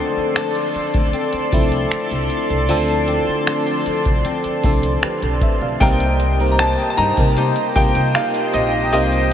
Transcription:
0.00 2.68 D3 medium
0.00 0.46 F3 medium
0.00 0.43 A3 medium
0.00 0.44 C4 medium
0.00 1.13 C4 medium
0.00 0.44 D4 medium
0.00 0.44 A4 medium
0.00 5.77 A4 medium
0.00 5.77 D5 medium
0.00 5.77 A5 medium
0.00 5.77 C6 medium
0.17 muted upright bass stroke soft
0.36 3.46 A4 medium
0.36 finger snap loud
0.36 closed hi-hat medium
0.55 closed hi-hat soft
0.75 muted upright bass stroke soft
0.75 closed hi-hat soft
0.94 1.10 D2 medium
0.94 kick medium
0.94 closed hi-hat soft
1.13 3.08 C4 medium
1.13 closed hi-hat medium
1.33 muted upright bass stroke soft
1.33 closed hi-hat medium
1.52 1.85 C2 medium
1.52 2.23 F3 medium
1.52 2.23 A3 medium
1.52 2.24 C4 medium
1.52 2.24 D4 medium
1.52 2.24 E4 medium
1.52 kick medium
1.52 closed hi-hat medium
1.72 closed hi-hat medium
1.91 finger snap loud
1.91 muted upright bass stroke soft
1.91 closed hi-hat medium
2.11 2.27 C2 medium
2.11 closed hi-hat medium
2.30 closed hi-hat medium
2.50 2.69 C2 medium
2.69 3.18 D2 loud
2.69 5.80 D3 medium
2.69 3.64 F3 loud
2.69 3.64 A3 medium
2.69 3.64 C4 loud
2.69 3.64 D4 medium
2.69 3.65 A4 loud
2.69 closed hi-hat medium
2.88 closed hi-hat soft
3.08 4.24 C4 medium
3.08 closed hi-hat medium
3.28 muted upright bass stroke soft
3.47 5.89 A4 medium
3.47 finger snap loud
3.47 closed hi-hat medium
3.67 closed hi-hat soft
3.86 muted upright bass stroke soft
3.86 closed hi-hat soft
4.05 4.22 C2 medium
4.05 kick medium
4.05 closed hi-hat soft
4.25 6.58 C4 medium
4.25 closed hi-hat medium
4.44 muted upright bass stroke soft
4.44 closed hi-hat medium
4.64 4.96 C2 medium
4.64 5.35 F3 medium
4.64 5.35 A3 medium
4.64 5.35 C4 medium
4.64 5.35 D4 medium
4.64 5.04 A4 medium
4.64 kick medium
4.64 closed hi-hat medium
4.83 closed hi-hat medium
5.03 5.22 G4 soft
5.03 5.22 B4 medium
5.03 finger snap loud
5.03 muted upright bass stroke soft
5.03 closed hi-hat medium
5.22 5.38 B1 medium
5.22 5.42 A4 medium
5.22 5.41 C5 medium
5.22 closed hi-hat medium
5.41 5.61 C5 medium
5.41 5.61 E5 medium
5.41 kick medium
5.41 closed hi-hat medium
5.61 5.77 B1 medium
5.61 5.99 D5 medium
5.61 5.99 F5 medium
5.80 6.74 C2 loud
5.80 8.91 C3 medium
5.80 6.16 G3 medium
5.80 6.16 A#3 medium
5.80 6.17 C4 medium
5.80 6.17 D#4 medium
5.80 9.33 G4 medium
5.80 6.17 A#4 loud
5.80 9.33 C5 medium
5.80 9.33 D#5 medium
5.80 6.54 G5 medium
5.80 9.33 G5 medium
5.80 kick loud
5.80 closed hi-hat medium
6.00 closed hi-hat soft
6.20 closed hi-hat medium
6.39 6.87 G3 medium
6.39 6.87 A#3 medium
6.39 6.87 C4 medium
6.39 6.87 D#4 medium
6.39 6.87 A#4 medium
6.52 6.59 A#5 medium
6.59 7.36 A#3 medium
6.59 6.96 D#4 medium
6.59 7.36 G4 medium
6.59 6.89 A5 loud
6.59 finger snap loud
6.59 closed hi-hat medium
6.78 closed hi-hat soft
6.90 6.97 A5 medium
6.97 7.14 G2 loud
6.97 7.36 D#4 medium
6.97 7.78 A#5 loud
6.97 closed hi-hat soft
7.17 7.50 C3 medium
7.17 7.53 G3 medium
7.17 7.53 A#3 medium
7.17 7.53 C4 medium
7.17 7.53 D#4 medium
7.17 7.54 A#4 medium
7.17 kick medium
7.17 closed hi-hat soft
7.36 8.14 A#3 medium
7.36 8.14 D#4 medium
7.36 7.74 G4 medium
7.36 closed hi-hat medium
7.56 closed hi-hat medium
7.75 7.92 C2 medium
7.75 8.46 G3 medium
7.75 8.47 A#3 medium
7.75 8.47 C4 medium
7.75 8.47 D#4 medium
7.75 8.47 F4 medium
7.75 8.15 G4 medium
7.75 8.16 G5 medium
7.75 kick medium
7.75 closed hi-hat medium
7.95 8.12 C3 medium
7.95 closed hi-hat medium
8.15 9.33 A#3 medium
8.15 8.52 D#4 medium
8.15 9.33 G4 medium
8.15 8.51 F5 medium
8.15 finger snap loud
8.15 closed hi-hat medium
8.34 closed hi-hat medium
8.53 8.93 A#1 medium
8.53 9.33 D#4 medium
8.53 8.90 D#5 medium
8.53 closed hi-hat medium
8.92 9.33 C2 loud
8.92 9.33 C3 medium
8.92 9.28 G3 medium
8.92 9.28 A#3 medium
8.92 9.28 C4 medium
8.92 9.29 D#4 medium
8.92 9.29 F4 loud
8.92 9.33 D#5 medium
8.92 closed hi-hat medium
9.12 closed hi-hat soft

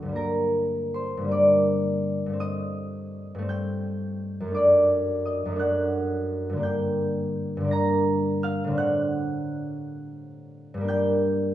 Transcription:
0.00 0.20 D2 medium
0.00 1.16 G2 soft
0.00 0.19 F#3 soft
0.00 0.20 A3 soft
0.00 1.54 D4 soft
0.00 1.31 D5 medium
0.05 1.20 D3 soft
0.05 1.23 G3 soft
0.12 1.27 A#3 soft
0.12 2.44 A#5 medium
0.17 2.45 A#4 medium
0.94 4.58 C5 medium
0.94 1.57 C6 medium
1.17 2.25 G2 medium
1.17 2.39 D3 soft
1.24 4.54 G3 soft
1.24 2.43 A#3 soft
1.31 2.45 D5 medium
1.31 2.44 D6 medium
2.26 3.33 G2 soft
2.26 3.37 A3 soft
2.33 3.41 C4 soft
2.40 4.58 D#5 medium
2.40 4.57 D#6 medium
3.35 4.50 G2 medium
3.35 4.46 A3 medium
3.42 4.54 C4 soft
3.49 4.58 G5 medium
3.49 4.58 G6 medium
4.40 5.44 F#2 medium
4.44 5.48 F#3 soft
4.44 5.51 A3 soft
4.51 5.55 D4 soft
4.51 8.45 D6 medium
4.56 8.46 D5 medium
5.25 6.68 D#5 medium
5.25 6.68 D#6 medium
5.45 6.60 F#2 medium
5.45 6.62 F#3 medium
5.52 6.63 A3 medium
5.56 6.59 D4 soft
5.56 6.67 F#6 medium
5.61 6.68 F#5 medium
6.49 7.56 G2 medium
6.49 7.59 D3 soft
6.56 7.63 A#3 soft
6.56 7.67 D4 soft
6.63 8.80 G5 medium
6.63 8.79 G6 medium
7.57 8.73 G2 medium
7.57 8.66 D3 medium
7.64 8.77 A#3 medium
7.64 8.74 D4 medium
7.71 8.81 A#5 medium
7.71 8.80 A#6 medium
8.43 8.81 F5 medium
8.43 9.03 F6 loud
8.64 10.85 A2 medium
8.64 10.87 D3 medium
8.71 10.89 C4 medium
8.71 10.83 D4 medium
8.78 10.93 F#5 medium
8.78 10.92 F#6 medium
10.74 11.54 G2 medium
10.74 11.54 G3 medium
10.81 11.54 A#3 medium
10.81 11.54 D4 medium
10.88 11.54 G5 medium
10.88 11.54 G6 loud

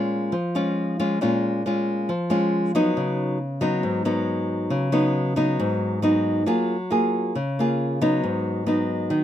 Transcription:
0.00 0.31 A#2 medium
0.00 0.33 G#3 soft
0.00 0.33 C#4 soft
0.00 0.34 F4 medium
0.32 1.18 F3 medium
0.55 0.96 G#3 medium
0.55 0.96 C#4 medium
0.55 0.96 F4 medium
1.00 1.18 G#3 medium
1.00 1.18 C#4 medium
1.00 1.18 F4 medium
1.21 2.07 A#2 medium
1.21 1.62 G#3 medium
1.21 1.62 C#4 medium
1.21 1.62 F4 medium
1.66 2.09 G#3 medium
1.66 2.09 C#4 soft
1.66 2.10 F4 medium
2.09 2.94 F3 medium
2.30 2.71 G#3 medium
2.30 2.71 C#4 medium
2.30 2.71 F4 medium
2.75 3.37 F#3 medium
2.75 3.37 B3 medium
2.75 3.37 D#4 medium
2.97 3.82 C#3 medium
3.61 4.02 F#3 medium
3.61 4.02 B3 medium
3.61 4.02 D#4 medium
3.83 4.69 G#2 medium
4.05 4.90 F#3 medium
4.05 4.90 B3 medium
4.05 4.90 D#4 medium
4.70 5.57 C#3 medium
4.92 5.33 F#3 medium
4.92 5.33 B3 medium
4.92 5.34 D#4 medium
5.36 5.99 F#3 medium
5.36 6.00 B3 medium
5.36 5.99 D#4 medium
5.60 6.45 G#2 medium
6.02 6.43 F#3 medium
6.02 6.44 B3 medium
6.02 6.44 D#4 medium
6.46 7.32 F#3 medium
6.46 6.75 A#3 soft
6.46 6.75 F4 medium
6.46 6.75 G#4 medium
6.90 7.34 A#3 soft
6.90 7.34 F4 medium
6.90 7.35 G#4 medium
7.35 8.20 C#3 medium
7.59 7.98 A#3 medium
7.59 7.99 F4 medium
7.59 7.99 G#4 medium
8.01 8.63 F#3 medium
8.01 8.63 B3 medium
8.01 8.64 D#4 medium
8.24 9.08 G#2 medium
8.66 9.24 F#3 medium
8.66 9.24 B3 medium
8.66 9.24 D#4 medium
9.10 9.24 D#3 medium

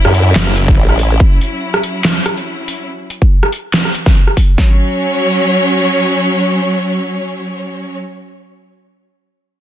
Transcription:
0.00 2.85 F#3 medium
0.00 2.85 C#4 medium
0.00 2.87 E4 medium
0.05 0.34 F#2 loud
0.05 cross-stick medium
0.14 closed hi-hat medium
0.36 0.76 F#1 loud
0.36 snare loud
0.36 clap medium
0.47 cross-stick medium
0.57 closed hi-hat medium
0.68 kick loud
0.68 closed hi-hat soft
0.78 1.19 A1 medium
0.89 cross-stick medium
0.99 open hi-hat loud
1.20 kick loud
1.41 closed hi-hat medium
1.74 cross-stick medium
1.83 closed hi-hat medium
2.05 snare loud
2.05 clap medium
2.26 cross-stick medium
2.26 closed hi-hat medium
2.37 closed hi-hat soft
2.68 open hi-hat loud
3.10 closed hi-hat medium
3.22 kick medium
3.43 cross-stick medium
3.52 closed hi-hat medium
3.74 snare loud
3.74 clap medium
3.85 cross-stick medium
3.95 closed hi-hat medium
4.06 kick loud
4.06 snare soft
4.06 closed hi-hat soft
4.27 cross-stick medium
4.37 kick medium
4.37 open hi-hat loud
4.58 7.96 F#3 medium
4.58 7.96 C#4 medium
4.58 7.96 C#5 medium
4.58 kick loud
4.58 snare loud

